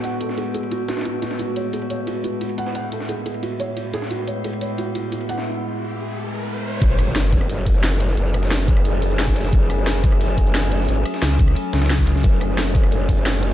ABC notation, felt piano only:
X:1
M:4/4
L:1/8
Q:1/4=177
K:F#m
V:1 name="Felt piano"
f A G G F F F F | F c G c F F F f | f A G G F c F G | F c G c F F F f |
z8 | z8 | z8 | z8 |
z8 | z8 |]